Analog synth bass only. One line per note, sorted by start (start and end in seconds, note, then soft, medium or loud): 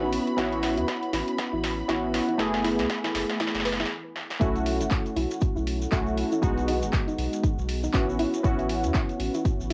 0.00 0.19 A1 medium
0.38 0.79 A1 loud
0.77 0.84 E2 loud
1.13 1.23 A1 loud
1.53 1.83 A1 loud
1.89 2.20 A1 medium
2.39 2.81 F#1 loud
2.79 2.86 C#2 loud
3.15 3.24 F#1 loud
3.55 3.85 F#1 loud
4.41 4.82 B1 loud
4.81 4.88 F#1 loud
5.17 5.26 B1 loud
5.56 5.86 B1 loud
5.92 6.24 B1 medium
6.43 6.84 B1 loud
6.82 6.89 F#1 loud
7.18 7.28 B1 loud
7.58 7.88 B1 loud
7.94 8.25 A1 medium
8.44 8.86 A1 loud
8.84 8.91 E2 loud
9.20 9.29 A1 loud
9.60 9.73 A1 loud